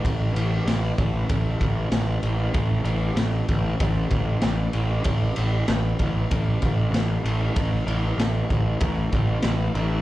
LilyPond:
<<
  \new Staff \with { instrumentName = "Picked electric bass" } { \clef bass \time 4/4 \key c \major \tempo 4 = 96 a,,8 a,,8 a,,8 a,,8 a,,8 a,,8 a,,8 a,,8 | a,,8 a,,8 a,,8 a,,8 a,,8 a,,8 a,,8 a,,8 | a,,8 a,,8 a,,8 a,,8 a,,8 a,,8 a,,8 a,,8 | a,,8 a,,8 a,,8 a,,8 a,,8 a,,8 a,,8 a,,8 | }
  \new DrumStaff \with { instrumentName = "Drums" } \drummode { \time 4/4 <bd cymr>8 cymr8 <cymr sn>8 <bd cymr>8 <bd cymr>8 <bd cymr>8 <cymr sn>8 cymr8 | <bd cymr>8 cymr8 <cymr sn>8 <bd cymr>8 <bd cymr>8 <bd cymr>8 <cymr sn>8 cymr8 | <bd cymr>8 cymr8 <cymr sn>8 <bd cymr>8 <bd cymr>8 <bd cymr>8 <cymr sn>8 cymr8 | <bd cymr>8 cymr8 <cymr sn>8 <bd cymr>8 <bd cymr>8 <bd cymr>8 <cymr sn>8 cymr8 | }
>>